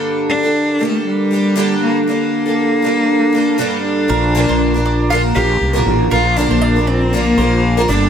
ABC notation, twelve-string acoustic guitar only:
X:1
M:4/4
L:1/16
Q:"Swing 16ths" 1/4=118
K:Bb
V:1 name="Twelve-string acoustic guitar"
[G,,D,G,B,DA]3 [G,B,DA]3 [G,B,DA]4 [G,B,DA]2 [G,,D,G,B,DA]4 | [G,B,DA]3 [G,B,DA]3 [G,B,DA]4 [G,B,DA]2 [G,,D,G,B,DA]4 | [F,B,DB]2 [B,,D,F,B,DB]3 [F,B,DB]3 [B,,D,F,B,DB]2 [F,B,DB]3 [B,,D,F,B,DB]3 | [F,B,DB]2 [B,,D,F,B,DB]3 [F,B,DB]3 [B,,D,F,B,DB]2 [F,B,DB]3 [B,,D,F,B,DB] [G,,D,G,B,DA]2 |]